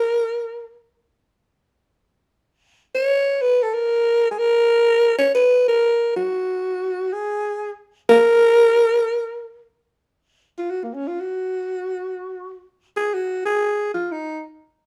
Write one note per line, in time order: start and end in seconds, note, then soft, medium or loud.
0.00 0.78 A#4 medium
2.95 3.43 C#5 loud
3.42 3.64 B4 loud
3.63 3.75 A4 medium
3.74 4.31 A#4 loud
4.31 4.40 G#4 medium
4.39 5.18 A#4 loud
5.18 5.32 C#5 medium
5.35 5.65 B4 medium
5.68 6.12 A#4 loud
6.16 7.15 F#4 medium
7.13 7.75 G#4 medium
8.09 9.66 A#4 loud
10.58 10.72 F4 medium
10.70 10.85 F#4 medium
10.84 10.95 A#3 soft
10.94 11.09 C#4 medium
11.08 11.22 F4 medium
11.21 12.64 F#4 medium
12.97 13.15 G#4 medium
13.14 13.45 F#4 medium
13.46 13.89 G#4 loud
13.94 14.13 F4 medium
14.12 14.42 D#4 medium